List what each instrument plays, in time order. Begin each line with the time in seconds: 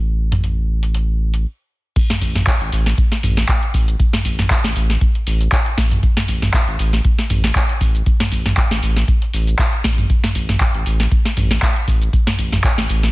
Already playing: sub bass A1
0.32 closed hi-hat, mid tom
0.44 closed hi-hat
0.83 closed hi-hat
0.95 closed hi-hat
1.34 closed hi-hat
1.96 kick, closed hi-hat, crash, cabasa
2.10 snare, closed hi-hat, mid tom
2.22 sub bass A1, kick, open hi-hat, cabasa
2.35 snare, closed hi-hat, mid tom, cabasa
2.47 kick, clap, closed hi-hat, cabasa
2.61 sub bass A1, closed hi-hat
2.72 sub bass A1, open hi-hat, cabasa
2.86 snare, closed hi-hat, cabasa
2.98 kick, closed hi-hat, cabasa
3.12 snare, closed hi-hat
3.23 sub bass A1, mid tom, open hi-hat, cabasa
3.37 snare, closed hi-hat, cabasa
3.49 kick, clap, closed hi-hat, cabasa
3.63 closed hi-hat
3.74 sub bass A1, kick, open hi-hat, cabasa
3.88 closed hi-hat, cabasa
4.00 kick, closed hi-hat, cabasa
4.13 snare, closed hi-hat, mid tom
4.25 sub bass A1, kick, open hi-hat, cabasa
4.39 snare, closed hi-hat, mid tom, cabasa
4.50 kick, clap, closed hi-hat, cabasa
4.64 sub bass A1, snare, closed hi-hat
4.76 sub bass A1, open hi-hat, cabasa
4.90 snare, closed hi-hat, cabasa
5.01 kick, closed hi-hat, cabasa
5.15 closed hi-hat
5.27 sub bass A1, open hi-hat, cabasa
5.41 closed hi-hat, cabasa
5.52 kick, clap, closed hi-hat, cabasa
5.66 closed hi-hat
5.78 sub bass A1, kick, snare, open hi-hat, cabasa
5.91 closed hi-hat, mid tom, cabasa
6.03 kick, closed hi-hat, cabasa
6.17 snare, closed hi-hat, mid tom
6.28 sub bass A1, kick, open hi-hat, cabasa
6.42 snare, closed hi-hat, mid tom, cabasa
6.54 kick, clap, closed hi-hat, cabasa
6.68 sub bass A1, closed hi-hat
6.79 sub bass A1, open hi-hat, cabasa
6.93 snare, closed hi-hat, cabasa
7.05 kick, closed hi-hat, cabasa
7.18 snare, closed hi-hat
7.30 sub bass A1, mid tom, open hi-hat, cabasa
7.44 snare, cabasa
7.55 kick, clap, closed hi-hat, cabasa
7.69 closed hi-hat
7.81 sub bass A1, kick, open hi-hat, cabasa
7.95 closed hi-hat, cabasa
8.06 kick, closed hi-hat, cabasa
8.20 snare, closed hi-hat, mid tom
8.32 sub bass A1, kick, open hi-hat, cabasa
8.46 snare, closed hi-hat, mid tom, cabasa
8.57 kick, clap, closed hi-hat, cabasa
8.71 sub bass A1, snare, closed hi-hat
8.83 sub bass A1, open hi-hat, cabasa
8.96 snare, closed hi-hat, cabasa
9.08 kick, closed hi-hat, cabasa
9.22 closed hi-hat
9.34 sub bass A1, open hi-hat, cabasa
9.47 closed hi-hat, cabasa
9.59 kick, clap, closed hi-hat, cabasa
9.73 closed hi-hat
9.84 sub bass A1, kick, snare, open hi-hat, cabasa
9.98 closed hi-hat, mid tom, cabasa
10.10 kick, closed hi-hat, cabasa
10.24 snare, closed hi-hat, mid tom
10.35 sub bass A1, kick, open hi-hat, cabasa
10.49 snare, closed hi-hat, mid tom, cabasa
10.60 kick, clap, closed hi-hat, cabasa
10.74 sub bass A1, closed hi-hat
10.86 sub bass A1, open hi-hat, cabasa
11.00 snare, closed hi-hat, cabasa
11.12 kick, closed hi-hat, cabasa
11.25 snare, closed hi-hat
11.37 sub bass A1, mid tom, open hi-hat, cabasa
11.51 snare, closed hi-hat, cabasa
11.62 kick, clap, closed hi-hat, cabasa
11.76 closed hi-hat
11.88 sub bass A1, kick, open hi-hat, cabasa
12.02 closed hi-hat, cabasa
12.13 kick, closed hi-hat, cabasa
12.27 snare, closed hi-hat, mid tom
12.39 sub bass A1, kick, open hi-hat, cabasa
12.53 snare, closed hi-hat, mid tom, cabasa
12.64 kick, clap, closed hi-hat, cabasa
12.78 sub bass A1, snare, closed hi-hat
12.89 sub bass A1, open hi-hat, cabasa
13.03 snare, closed hi-hat, cabasa